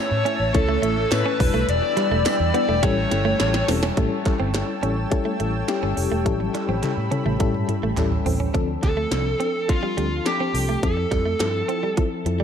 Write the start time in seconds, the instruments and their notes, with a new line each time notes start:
Already playing: overdriven electric guitar E3 A3, fm electric piano A3 C#4 E4 C#5, analog synth pad C#5 E5 A5 E6
0.00 lead electric guitar C#5
0.11 fingered electric bass A2
0.25 fm electric piano A3 C#4 E4 C#5, clean electric guitar C#4, closed hi-hat
0.40 fingered electric bass A1
0.53 fingered electric bass C#2, overdriven electric guitar A2 E3 A3, fm electric piano A3 C#4 E4 C#5, lead electric guitar A4, muted clean electric guitar stroke, kick, closed hi-hat
0.69 clean electric guitar A3
0.82 fingered electric bass A1, clean electric guitar A3, fm electric piano A3 C#4 E4 C#5, closed hi-hat
1.11 overdriven electric guitar A2 E3 A3, fingered electric bass A2, fm electric piano A3 C#4 E4 C#5, lead electric guitar B4, snare, clap, closed hi-hat, tambourine
1.26 clean electric guitar C#4
1.39 fingered electric bass E1, overdriven electric guitar B2 E3, fm electric piano G3 D4 E4 B4, analog synth pad D5 G5 B5, muted clean electric guitar stroke, kick, open hi-hat
1.43 overdriven electric guitar E2
1.54 fingered electric bass B1, clean electric guitar A3
1.68 fingered electric bass E1, lead electric guitar D5, closed hi-hat
1.83 muted clean electric guitar stroke
1.97 clean electric guitar G3, fm electric piano G3 D4 E4 B4, clap, closed hi-hat
2.11 fingered electric bass E1, clean electric guitar A3
2.26 fm electric piano G3 D4 E4 B4, muted clean electric guitar stroke, snare, clap, closed hi-hat, tambourine
2.40 fingered electric bass E2
2.54 fm electric piano G3 D4 E4 B4, clean electric guitar B3, lead electric guitar D5, closed hi-hat
2.69 fingered electric bass E1, clean electric guitar A3
2.82 fingered electric bass A1, overdriven electric guitar A2 E3 A3, fm electric piano G3 C#4 E4 A4, clean electric guitar G3, analog synth pad C#5 A5, lead electric guitar C#5, kick, snare, closed hi-hat
3.11 fingered electric bass G1, fm electric piano G3 C#4 E4 A4, muted clean electric guitar stroke, snare, closed hi-hat
3.25 clean electric guitar A3
3.39 fingered electric bass A1, overdriven electric guitar A2 E3 A3, fm electric piano G3 C#4 E4 A4, muted clean electric guitar stroke, snare, clap, closed hi-hat
3.54 snare
3.68 fingered electric bass E1, fm electric piano G3 C#4 E4 A4, clean electric guitar C4, snare, open hi-hat
3.83 clean electric guitar C#4, snare
3.97 fingered electric bass A1, fm electric piano G3 C#4 E4 A4, clean electric guitar A3, analog synth pad C#5 G5 A5 E6, kick, closed hi-hat
4.25 fm electric piano G3 C#4 E4 A4, muted clean electric guitar stroke, kick, clap, closed hi-hat
4.40 fingered electric bass G1, clean electric guitar C4
4.54 fm electric piano G3 C#4 E4 A4, snare, clap, closed hi-hat
4.82 fingered electric bass A1, fm electric piano G3 C#4 E4 A4, clean electric guitar C#4, closed hi-hat
5.11 fm electric piano G3 C#4 E4 A4, muted clean electric guitar stroke, kick, closed hi-hat
5.25 clean electric guitar A3
5.40 fingered electric bass A1, fm electric piano G3 C#4 E4 A4, clean electric guitar A3, closed hi-hat
5.68 fm electric piano G3 C#4 E4 G4, snare, clap, closed hi-hat
5.83 fingered electric bass G1, clean electric guitar C#4
5.97 fingered electric bass F1, fm electric piano G3 C#4 E4 A4, muted clean electric guitar stroke, open hi-hat
6.12 fingered electric bass E1, clean electric guitar A3
6.25 fingered electric bass A1, fm electric piano G3 C#4 E4 A4, analog synth pad B5, kick, closed hi-hat, high tom
6.40 muted clean electric guitar stroke, high tom
6.54 fm electric piano G3 C#4 E4 A4, clean electric guitar G3, clap, closed hi-hat
6.68 fingered electric bass A1, clean electric guitar C4, high tom
6.83 fm electric piano G3 C#4 E4 A4, muted clean electric guitar stroke, muted fingered electric bass stroke, clap, closed hi-hat, mid tom
6.97 fingered electric bass A2
7.11 fm electric piano G3 C#4 E4 A4, clean electric guitar C#4, closed hi-hat, mid tom
7.26 fingered electric bass A1, clean electric guitar A3, mid tom
7.39 fingered electric bass A2, fm electric piano G3 C#4 E4 A4, clean electric guitar G3, kick, closed hi-hat
7.54 mid tom
7.68 fm electric piano G3 C#4 E4 A4, muted clean electric guitar stroke, closed hi-hat, mid tom
7.83 fingered electric bass A1, clean electric guitar A3
7.97 fingered electric bass A1, fm electric piano G3 C#4 E4 A4, muted clean electric guitar stroke, clap, closed hi-hat, floor tom
8.12 floor tom
8.26 fingered electric bass A1, fm electric piano G3 C#4 E4 A4, clean electric guitar C4, floor tom, open hi-hat
8.40 clean electric guitar C#4, floor tom
8.54 fingered electric bass D2, fm electric piano F3 C4 D4 A4, clean electric guitar D4, kick, closed hi-hat
8.82 fingered electric bass D2, fm electric piano F3 C4 D4 A4, lead electric guitar A4, muted clean electric guitar stroke, kick, clap, closed hi-hat
8.97 clean electric guitar A3
9.11 fingered electric bass C2, fm electric piano F3 C4 D4 A4, snare, clap, closed hi-hat
9.40 fm electric piano F3 C4 D4 A4, clean electric guitar C4, closed hi-hat
9.68 fm electric piano F3 C4 D4 A4, lead electric guitar F4, muted clean electric guitar stroke, kick, closed hi-hat
9.83 clean electric guitar G3
9.96 fingered electric bass D2, fm electric piano F3 C4 D4 A4, clean electric guitar G3, closed hi-hat
10.25 fm electric piano F3 C4 D4 A4, lead electric guitar G4, snare, clap, closed hi-hat
10.40 clean electric guitar C4
10.54 fingered electric bass C2, fm electric piano F3 C4 D4 A4, muted clean electric guitar stroke, open hi-hat
10.69 clean electric guitar A3
10.83 fingered electric bass F2, fm electric piano F3 C4 E4 A4, lead electric guitar A4, kick, closed hi-hat
10.97 muted clean electric guitar stroke
11.11 fingered electric bass F2, fm electric piano F3 C4 E4 A4, clean electric guitar G3, kick, clap, closed hi-hat
11.26 clean electric guitar A3
11.40 fingered electric bass G2, fm electric piano F3 C4 E4 A4, muted clean electric guitar stroke, snare, clap, closed hi-hat
11.68 fm electric piano F3 C4 E4 A4, clean electric guitar C4, closed hi-hat
11.83 clean electric guitar G3
11.97 fm electric piano F3 C4 E4 A4, clean electric guitar F3, kick, closed hi-hat
12.26 fingered electric bass F2, fm electric piano F3 C4 E4 A4, muted clean electric guitar stroke, closed hi-hat
12.40 clean electric guitar G3